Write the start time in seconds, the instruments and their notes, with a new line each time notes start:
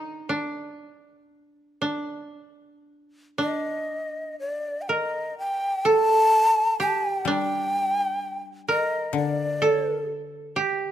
Already playing: koto D#4
0.29 koto D4
1.82 koto D4
3.38 koto D4, shakuhachi D#5
4.40 shakuhachi D5
4.82 shakuhachi G5
4.89 koto A#4, shakuhachi D#5
5.38 shakuhachi G5
5.85 koto A4, shakuhachi A5
6.80 koto G4, shakuhachi A5
7.08 shakuhachi G5
7.25 koto G3 D4, shakuhachi G5
8.68 koto A#4, shakuhachi D#5
9.13 koto D3, shakuhachi D5
9.62 koto A4
10.56 koto G4